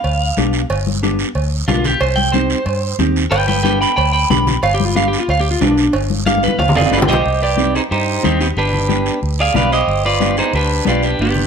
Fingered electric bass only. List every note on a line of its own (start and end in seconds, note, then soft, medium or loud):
0.04 0.31 D2 loud
0.37 0.63 B1 loud
0.70 1.23 G1 loud
1.35 1.62 D2 medium
1.68 1.94 B1 loud
2.01 2.53 C2 loud
2.66 2.92 G2 loud
2.99 3.25 D#2 loud
3.31 3.84 G1 loud
3.98 4.24 D2 loud
4.31 4.57 B1 loud
4.63 5.15 G1 loud
5.28 5.55 D2 loud
5.61 5.87 B1 loud
5.94 6.46 G1 loud
6.59 6.72 D2 loud
6.75 6.90 F1 medium
6.91 7.07 G1 medium
7.09 7.24 B1 medium
7.26 7.78 C2 loud
7.91 8.17 G2 medium
8.25 8.51 D#2 loud
8.57 9.09 G1 loud
9.23 9.49 D2 loud
9.55 9.81 B1 loud
9.87 10.40 G1 loud
10.53 10.80 D2 loud
10.87 11.13 B1 loud
11.19 11.47 G1 loud